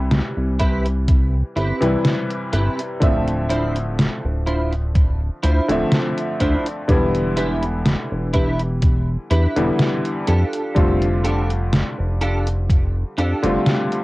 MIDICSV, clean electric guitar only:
0, 0, Header, 1, 2, 480
1, 0, Start_track
1, 0, Tempo, 967742
1, 1498, Time_signature, 4, 2, 24, 8
1, 6963, End_track
2, 0, Start_track
2, 0, Title_t, "Clean electric guitar"
2, 0, Program_c, 0, 27
2, 295, Note_on_c, 0, 64, 77
2, 299, Note_on_c, 0, 71, 84
2, 302, Note_on_c, 0, 67, 67
2, 304, Note_on_c, 0, 60, 68
2, 425, Note_off_c, 0, 60, 0
2, 425, Note_off_c, 0, 64, 0
2, 426, Note_off_c, 0, 67, 0
2, 426, Note_off_c, 0, 71, 0
2, 775, Note_on_c, 0, 64, 74
2, 778, Note_on_c, 0, 71, 90
2, 779, Note_on_c, 0, 67, 76
2, 782, Note_on_c, 0, 60, 74
2, 904, Note_off_c, 0, 64, 0
2, 905, Note_off_c, 0, 60, 0
2, 905, Note_off_c, 0, 67, 0
2, 905, Note_off_c, 0, 71, 0
2, 1254, Note_on_c, 0, 64, 71
2, 1258, Note_on_c, 0, 71, 98
2, 1260, Note_on_c, 0, 67, 76
2, 1262, Note_on_c, 0, 60, 74
2, 1385, Note_off_c, 0, 60, 0
2, 1385, Note_off_c, 0, 64, 0
2, 1385, Note_off_c, 0, 67, 0
2, 1385, Note_off_c, 0, 71, 0
2, 1734, Note_on_c, 0, 64, 80
2, 1738, Note_on_c, 0, 72, 100
2, 1741, Note_on_c, 0, 62, 76
2, 1741, Note_on_c, 0, 65, 73
2, 1864, Note_off_c, 0, 62, 0
2, 1864, Note_off_c, 0, 64, 0
2, 1865, Note_off_c, 0, 65, 0
2, 1865, Note_off_c, 0, 72, 0
2, 2214, Note_on_c, 0, 64, 73
2, 2218, Note_on_c, 0, 72, 85
2, 2219, Note_on_c, 0, 65, 68
2, 2222, Note_on_c, 0, 62, 76
2, 2344, Note_off_c, 0, 62, 0
2, 2344, Note_off_c, 0, 64, 0
2, 2344, Note_off_c, 0, 65, 0
2, 2344, Note_off_c, 0, 72, 0
2, 2692, Note_on_c, 0, 64, 85
2, 2696, Note_on_c, 0, 72, 96
2, 2697, Note_on_c, 0, 65, 65
2, 2698, Note_on_c, 0, 62, 83
2, 2823, Note_off_c, 0, 62, 0
2, 2823, Note_off_c, 0, 64, 0
2, 2824, Note_off_c, 0, 65, 0
2, 2824, Note_off_c, 0, 72, 0
2, 3175, Note_on_c, 0, 64, 75
2, 3177, Note_on_c, 0, 72, 92
2, 3179, Note_on_c, 0, 65, 71
2, 3181, Note_on_c, 0, 62, 75
2, 3304, Note_off_c, 0, 64, 0
2, 3305, Note_off_c, 0, 62, 0
2, 3305, Note_off_c, 0, 65, 0
2, 3305, Note_off_c, 0, 72, 0
2, 3655, Note_on_c, 0, 64, 82
2, 3658, Note_on_c, 0, 71, 95
2, 3659, Note_on_c, 0, 67, 73
2, 3660, Note_on_c, 0, 62, 80
2, 3784, Note_off_c, 0, 62, 0
2, 3784, Note_off_c, 0, 64, 0
2, 3785, Note_off_c, 0, 67, 0
2, 3785, Note_off_c, 0, 71, 0
2, 4134, Note_on_c, 0, 64, 84
2, 4137, Note_on_c, 0, 71, 92
2, 4140, Note_on_c, 0, 67, 66
2, 4141, Note_on_c, 0, 62, 72
2, 4264, Note_off_c, 0, 62, 0
2, 4264, Note_off_c, 0, 64, 0
2, 4264, Note_off_c, 0, 71, 0
2, 4265, Note_off_c, 0, 67, 0
2, 4615, Note_on_c, 0, 64, 81
2, 4618, Note_on_c, 0, 71, 92
2, 4619, Note_on_c, 0, 67, 71
2, 4620, Note_on_c, 0, 62, 77
2, 4744, Note_off_c, 0, 62, 0
2, 4744, Note_off_c, 0, 64, 0
2, 4745, Note_off_c, 0, 67, 0
2, 4745, Note_off_c, 0, 71, 0
2, 5096, Note_on_c, 0, 69, 104
2, 5098, Note_on_c, 0, 67, 88
2, 5100, Note_on_c, 0, 65, 72
2, 5104, Note_on_c, 0, 62, 72
2, 5487, Note_off_c, 0, 62, 0
2, 5487, Note_off_c, 0, 65, 0
2, 5488, Note_off_c, 0, 67, 0
2, 5488, Note_off_c, 0, 69, 0
2, 5576, Note_on_c, 0, 69, 89
2, 5578, Note_on_c, 0, 67, 77
2, 5580, Note_on_c, 0, 65, 72
2, 5582, Note_on_c, 0, 62, 78
2, 5705, Note_off_c, 0, 62, 0
2, 5705, Note_off_c, 0, 65, 0
2, 5705, Note_off_c, 0, 67, 0
2, 5705, Note_off_c, 0, 69, 0
2, 6058, Note_on_c, 0, 69, 94
2, 6059, Note_on_c, 0, 67, 80
2, 6061, Note_on_c, 0, 65, 71
2, 6063, Note_on_c, 0, 62, 70
2, 6185, Note_off_c, 0, 62, 0
2, 6185, Note_off_c, 0, 65, 0
2, 6186, Note_off_c, 0, 67, 0
2, 6186, Note_off_c, 0, 69, 0
2, 6537, Note_on_c, 0, 62, 87
2, 6539, Note_on_c, 0, 67, 78
2, 6541, Note_on_c, 0, 65, 67
2, 6541, Note_on_c, 0, 69, 84
2, 6665, Note_off_c, 0, 62, 0
2, 6666, Note_off_c, 0, 65, 0
2, 6666, Note_off_c, 0, 67, 0
2, 6666, Note_off_c, 0, 69, 0
2, 6963, End_track
0, 0, End_of_file